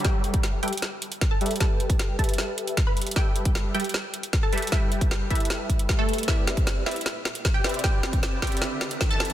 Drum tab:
HH |x---x-x-x---xxxxx---x-x-x---xxxx|x---x-x-x---xxxxx---x-x-x---xxxx|x---x-x-x---xxxxx---x-x-x---xxxx|x---x-x-x---xxxxx---x-x-x---xxxx|
SD |o-------o-------o-------o-------|o-------o-------o-------o-------|o-------o-------o-------o-------|o-------o-------o-------o-------|
BD |o-----o-----------------o-------|o-----o-----o-----------o-------|o-----o-----------------o-------|o-----o-----o-------o---o-------|

HH |x---x-x-x---xxxxx---x-x-x---xxxx|x---x-x-x---xxxxx---x-x-x---xxx-|
SD |o---o---o---o---o---o---o---o---|o---o---o---o---o---o---o---o---|
BD |o-----o-----------------o-------|o-----o-----o-----------o-------|